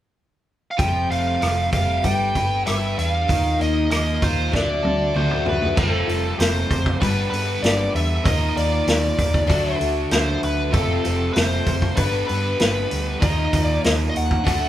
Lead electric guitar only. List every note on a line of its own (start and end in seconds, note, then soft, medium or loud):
0.71 0.78 F5 medium
0.79 1.07 G5 medium
1.11 1.68 F5 medium
1.73 2.04 F5 medium
2.04 2.62 G5 medium
2.66 2.98 E5 medium
2.99 3.10 E5 medium
3.10 3.61 F5 medium
3.62 3.90 D#5 medium
3.91 4.23 D#5 medium
4.23 4.51 C5 medium
4.55 5.43 D5 medium
5.16 5.44 C5 medium
5.49 5.78 B4 medium
5.79 6.36 A4 medium
6.40 6.98 C5 medium
7.01 7.29 B4 medium
7.30 7.63 B4 medium
7.62 7.92 D5 medium
7.96 8.26 E5 medium
8.26 8.54 D#5 medium
8.57 9.77 D5 medium
10.12 10.40 C5 medium
10.44 10.73 B4 medium
10.74 11.33 A4 medium
11.33 11.96 C5 medium
11.97 12.26 B4 medium
12.28 13.24 B4 medium
13.22 13.63 D#5 medium
13.63 13.80 D5 medium
13.85 13.91 D#5 medium
14.10 14.16 D#5 medium
14.17 14.69 F#5 medium